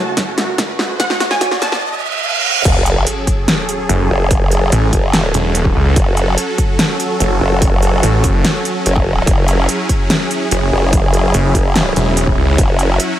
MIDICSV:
0, 0, Header, 1, 9, 480
1, 0, Start_track
1, 0, Key_signature, 3, "minor"
1, 0, Tempo, 413793
1, 1157, Time_signature, 4, 2, 24, 8
1, 15305, End_track
2, 0, Start_track
2, 0, Title_t, "Synth pluck"
2, 0, Program_c, 0, 84
2, 0, Note_on_c, 0, 81, 93
2, 1061, Note_off_c, 0, 81, 0
2, 1157, Note_on_c, 0, 78, 104
2, 1232, Note_off_c, 0, 78, 0
2, 1277, Note_on_c, 0, 66, 66
2, 1352, Note_off_c, 0, 66, 0
2, 1396, Note_on_c, 0, 66, 63
2, 1472, Note_off_c, 0, 66, 0
2, 1517, Note_on_c, 0, 80, 95
2, 1592, Note_off_c, 0, 80, 0
2, 1637, Note_on_c, 0, 66, 64
2, 1712, Note_off_c, 0, 66, 0
2, 1757, Note_on_c, 0, 66, 64
2, 1832, Note_off_c, 0, 66, 0
2, 1877, Note_on_c, 0, 81, 98
2, 2981, Note_off_c, 0, 81, 0
2, 15305, End_track
3, 0, Start_track
3, 0, Title_t, "Supersaw synth"
3, 0, Program_c, 1, 81
3, 0, Note_on_c, 1, 42, 74
3, 0, Note_on_c, 1, 49, 69
3, 0, Note_on_c, 1, 57, 70
3, 0, Note_on_c, 1, 66, 88
3, 2071, Note_off_c, 1, 42, 0
3, 2071, Note_off_c, 1, 49, 0
3, 2071, Note_off_c, 1, 57, 0
3, 2088, Note_off_c, 1, 66, 0
3, 3077, Note_on_c, 1, 54, 79
3, 3077, Note_on_c, 1, 61, 74
3, 3077, Note_on_c, 1, 68, 72
3, 3077, Note_on_c, 1, 69, 89
3, 6879, Note_off_c, 1, 68, 0
3, 6917, Note_on_c, 1, 66, 72
3, 10711, Note_off_c, 1, 69, 0
3, 10719, Note_off_c, 1, 66, 0
3, 10757, Note_on_c, 1, 64, 72
3, 10757, Note_on_c, 1, 68, 88
3, 14558, Note_off_c, 1, 68, 0
3, 14597, Note_on_c, 1, 66, 93
3, 15305, Note_off_c, 1, 54, 0
3, 15305, Note_off_c, 1, 61, 0
3, 15305, Note_off_c, 1, 64, 0
3, 15305, Note_off_c, 1, 66, 0
3, 15305, End_track
4, 0, Start_track
4, 0, Title_t, "Detuned saw bass"
4, 0, Program_c, 2, 39
4, 4516, Note_on_c, 2, 30, 92
4, 4737, Note_off_c, 2, 30, 0
4, 5476, Note_on_c, 2, 33, 99
4, 5697, Note_off_c, 2, 33, 0
4, 6196, Note_on_c, 2, 28, 95
4, 6657, Note_off_c, 2, 28, 0
4, 6676, Note_on_c, 2, 37, 98
4, 6897, Note_off_c, 2, 37, 0
4, 8357, Note_on_c, 2, 30, 96
4, 8578, Note_off_c, 2, 30, 0
4, 9316, Note_on_c, 2, 33, 98
4, 9537, Note_off_c, 2, 33, 0
4, 9556, Note_on_c, 2, 30, 98
4, 9777, Note_off_c, 2, 30, 0
4, 12197, Note_on_c, 2, 30, 97
4, 12418, Note_off_c, 2, 30, 0
4, 13157, Note_on_c, 2, 30, 97
4, 13378, Note_off_c, 2, 30, 0
4, 13877, Note_on_c, 2, 28, 99
4, 14338, Note_off_c, 2, 28, 0
4, 14356, Note_on_c, 2, 37, 99
4, 14577, Note_off_c, 2, 37, 0
4, 15305, End_track
5, 0, Start_track
5, 0, Title_t, "Wobble bass"
5, 0, Program_c, 3, 39
5, 3076, Note_on_c, 3, 30, 95
5, 3537, Note_off_c, 3, 30, 0
5, 4757, Note_on_c, 3, 30, 99
5, 5458, Note_off_c, 3, 30, 0
5, 5716, Note_on_c, 3, 30, 97
5, 6177, Note_off_c, 3, 30, 0
5, 6917, Note_on_c, 3, 30, 99
5, 7378, Note_off_c, 3, 30, 0
5, 8597, Note_on_c, 3, 30, 94
5, 9298, Note_off_c, 3, 30, 0
5, 10277, Note_on_c, 3, 30, 100
5, 10738, Note_off_c, 3, 30, 0
5, 10757, Note_on_c, 3, 30, 100
5, 11218, Note_off_c, 3, 30, 0
5, 12436, Note_on_c, 3, 30, 97
5, 13137, Note_off_c, 3, 30, 0
5, 13396, Note_on_c, 3, 30, 97
5, 13857, Note_off_c, 3, 30, 0
5, 14597, Note_on_c, 3, 30, 94
5, 15058, Note_off_c, 3, 30, 0
5, 15305, End_track
6, 0, Start_track
6, 0, Title_t, "Reverse cymbal"
6, 0, Program_c, 4, 119
6, 2117, Note_on_c, 4, 60, 75
6, 3077, Note_off_c, 4, 60, 0
6, 15305, End_track
7, 0, Start_track
7, 0, Title_t, "Riser"
7, 0, Program_c, 5, 103
7, 0, Note_on_c, 5, 60, 75
7, 3077, Note_off_c, 5, 60, 0
7, 15305, End_track
8, 0, Start_track
8, 0, Title_t, "Sub drop"
8, 0, Program_c, 6, 103
8, 3077, Note_on_c, 6, 60, 74
8, 4997, Note_off_c, 6, 60, 0
8, 15305, End_track
9, 0, Start_track
9, 0, Title_t, "Drums"
9, 197, Note_on_c, 9, 36, 93
9, 197, Note_on_c, 9, 38, 80
9, 197, Note_on_c, 9, 42, 77
9, 313, Note_off_c, 9, 36, 0
9, 313, Note_off_c, 9, 38, 0
9, 313, Note_off_c, 9, 42, 0
9, 437, Note_on_c, 9, 38, 85
9, 437, Note_on_c, 9, 42, 53
9, 553, Note_off_c, 9, 38, 0
9, 553, Note_off_c, 9, 42, 0
9, 677, Note_on_c, 9, 36, 92
9, 677, Note_on_c, 9, 38, 88
9, 677, Note_on_c, 9, 42, 86
9, 793, Note_off_c, 9, 36, 0
9, 793, Note_off_c, 9, 38, 0
9, 793, Note_off_c, 9, 42, 0
9, 917, Note_on_c, 9, 38, 94
9, 1033, Note_off_c, 9, 38, 0
9, 1157, Note_on_c, 9, 36, 96
9, 1157, Note_on_c, 9, 38, 87
9, 1157, Note_on_c, 9, 42, 73
9, 1273, Note_off_c, 9, 36, 0
9, 1273, Note_off_c, 9, 38, 0
9, 1273, Note_off_c, 9, 42, 0
9, 1277, Note_on_c, 9, 38, 83
9, 1393, Note_off_c, 9, 38, 0
9, 1397, Note_on_c, 9, 38, 96
9, 1397, Note_on_c, 9, 42, 52
9, 1513, Note_off_c, 9, 38, 0
9, 1513, Note_off_c, 9, 42, 0
9, 1517, Note_on_c, 9, 38, 82
9, 1633, Note_off_c, 9, 38, 0
9, 1637, Note_on_c, 9, 36, 98
9, 1637, Note_on_c, 9, 38, 95
9, 1637, Note_on_c, 9, 42, 73
9, 1753, Note_off_c, 9, 36, 0
9, 1753, Note_off_c, 9, 38, 0
9, 1753, Note_off_c, 9, 42, 0
9, 1757, Note_on_c, 9, 38, 82
9, 1873, Note_off_c, 9, 38, 0
9, 1877, Note_on_c, 9, 38, 103
9, 1877, Note_on_c, 9, 42, 56
9, 1993, Note_off_c, 9, 38, 0
9, 1993, Note_off_c, 9, 42, 0
9, 1997, Note_on_c, 9, 38, 93
9, 2113, Note_off_c, 9, 38, 0
9, 3077, Note_on_c, 9, 36, 119
9, 3077, Note_on_c, 9, 42, 84
9, 3077, Note_on_c, 9, 49, 101
9, 3193, Note_off_c, 9, 36, 0
9, 3193, Note_off_c, 9, 42, 0
9, 3193, Note_off_c, 9, 49, 0
9, 3317, Note_on_c, 9, 42, 59
9, 3433, Note_off_c, 9, 42, 0
9, 3557, Note_on_c, 9, 42, 83
9, 3673, Note_off_c, 9, 42, 0
9, 3796, Note_on_c, 9, 36, 60
9, 3797, Note_on_c, 9, 42, 59
9, 3912, Note_off_c, 9, 36, 0
9, 3913, Note_off_c, 9, 42, 0
9, 4037, Note_on_c, 9, 38, 115
9, 4037, Note_on_c, 9, 42, 78
9, 4153, Note_off_c, 9, 38, 0
9, 4153, Note_off_c, 9, 42, 0
9, 4277, Note_on_c, 9, 42, 58
9, 4393, Note_off_c, 9, 42, 0
9, 4517, Note_on_c, 9, 42, 88
9, 4633, Note_off_c, 9, 42, 0
9, 4996, Note_on_c, 9, 36, 123
9, 4997, Note_on_c, 9, 42, 81
9, 5112, Note_off_c, 9, 36, 0
9, 5113, Note_off_c, 9, 42, 0
9, 5237, Note_on_c, 9, 42, 55
9, 5353, Note_off_c, 9, 42, 0
9, 5477, Note_on_c, 9, 42, 80
9, 5593, Note_off_c, 9, 42, 0
9, 5716, Note_on_c, 9, 36, 65
9, 5717, Note_on_c, 9, 42, 61
9, 5832, Note_off_c, 9, 36, 0
9, 5833, Note_off_c, 9, 42, 0
9, 5956, Note_on_c, 9, 38, 118
9, 5956, Note_on_c, 9, 42, 79
9, 6072, Note_off_c, 9, 38, 0
9, 6072, Note_off_c, 9, 42, 0
9, 6197, Note_on_c, 9, 42, 58
9, 6313, Note_off_c, 9, 42, 0
9, 6437, Note_on_c, 9, 42, 92
9, 6553, Note_off_c, 9, 42, 0
9, 6557, Note_on_c, 9, 36, 62
9, 6673, Note_off_c, 9, 36, 0
9, 6917, Note_on_c, 9, 36, 124
9, 6917, Note_on_c, 9, 42, 80
9, 7033, Note_off_c, 9, 36, 0
9, 7033, Note_off_c, 9, 42, 0
9, 7157, Note_on_c, 9, 42, 53
9, 7273, Note_off_c, 9, 42, 0
9, 7396, Note_on_c, 9, 42, 82
9, 7512, Note_off_c, 9, 42, 0
9, 7637, Note_on_c, 9, 36, 63
9, 7637, Note_on_c, 9, 42, 56
9, 7753, Note_off_c, 9, 36, 0
9, 7753, Note_off_c, 9, 42, 0
9, 7877, Note_on_c, 9, 38, 123
9, 7877, Note_on_c, 9, 42, 80
9, 7993, Note_off_c, 9, 38, 0
9, 7993, Note_off_c, 9, 42, 0
9, 8117, Note_on_c, 9, 42, 53
9, 8233, Note_off_c, 9, 42, 0
9, 8357, Note_on_c, 9, 42, 89
9, 8473, Note_off_c, 9, 42, 0
9, 8837, Note_on_c, 9, 36, 122
9, 8837, Note_on_c, 9, 42, 74
9, 8953, Note_off_c, 9, 36, 0
9, 8953, Note_off_c, 9, 42, 0
9, 9077, Note_on_c, 9, 42, 52
9, 9193, Note_off_c, 9, 42, 0
9, 9316, Note_on_c, 9, 42, 78
9, 9432, Note_off_c, 9, 42, 0
9, 9556, Note_on_c, 9, 36, 65
9, 9556, Note_on_c, 9, 42, 58
9, 9672, Note_off_c, 9, 36, 0
9, 9672, Note_off_c, 9, 42, 0
9, 9797, Note_on_c, 9, 38, 121
9, 9797, Note_on_c, 9, 42, 74
9, 9913, Note_off_c, 9, 38, 0
9, 9913, Note_off_c, 9, 42, 0
9, 10036, Note_on_c, 9, 42, 52
9, 10152, Note_off_c, 9, 42, 0
9, 10277, Note_on_c, 9, 42, 82
9, 10393, Note_off_c, 9, 42, 0
9, 10397, Note_on_c, 9, 36, 65
9, 10513, Note_off_c, 9, 36, 0
9, 10756, Note_on_c, 9, 36, 118
9, 10757, Note_on_c, 9, 42, 76
9, 10872, Note_off_c, 9, 36, 0
9, 10873, Note_off_c, 9, 42, 0
9, 10997, Note_on_c, 9, 42, 52
9, 11113, Note_off_c, 9, 42, 0
9, 11237, Note_on_c, 9, 42, 74
9, 11353, Note_off_c, 9, 42, 0
9, 11477, Note_on_c, 9, 36, 61
9, 11477, Note_on_c, 9, 42, 56
9, 11593, Note_off_c, 9, 36, 0
9, 11593, Note_off_c, 9, 42, 0
9, 11716, Note_on_c, 9, 38, 121
9, 11716, Note_on_c, 9, 42, 77
9, 11832, Note_off_c, 9, 38, 0
9, 11832, Note_off_c, 9, 42, 0
9, 11957, Note_on_c, 9, 42, 51
9, 12073, Note_off_c, 9, 42, 0
9, 12197, Note_on_c, 9, 42, 79
9, 12313, Note_off_c, 9, 42, 0
9, 12676, Note_on_c, 9, 36, 113
9, 12676, Note_on_c, 9, 42, 72
9, 12792, Note_off_c, 9, 36, 0
9, 12792, Note_off_c, 9, 42, 0
9, 12916, Note_on_c, 9, 42, 52
9, 13032, Note_off_c, 9, 42, 0
9, 13157, Note_on_c, 9, 42, 76
9, 13273, Note_off_c, 9, 42, 0
9, 13397, Note_on_c, 9, 36, 57
9, 13397, Note_on_c, 9, 42, 52
9, 13513, Note_off_c, 9, 36, 0
9, 13513, Note_off_c, 9, 42, 0
9, 13637, Note_on_c, 9, 38, 116
9, 13637, Note_on_c, 9, 42, 75
9, 13753, Note_off_c, 9, 38, 0
9, 13753, Note_off_c, 9, 42, 0
9, 13877, Note_on_c, 9, 42, 52
9, 13993, Note_off_c, 9, 42, 0
9, 14117, Note_on_c, 9, 42, 83
9, 14233, Note_off_c, 9, 42, 0
9, 14237, Note_on_c, 9, 36, 58
9, 14353, Note_off_c, 9, 36, 0
9, 14597, Note_on_c, 9, 36, 116
9, 14597, Note_on_c, 9, 42, 73
9, 14713, Note_off_c, 9, 36, 0
9, 14713, Note_off_c, 9, 42, 0
9, 14837, Note_on_c, 9, 42, 53
9, 14953, Note_off_c, 9, 42, 0
9, 15077, Note_on_c, 9, 42, 77
9, 15193, Note_off_c, 9, 42, 0
9, 15305, End_track
0, 0, End_of_file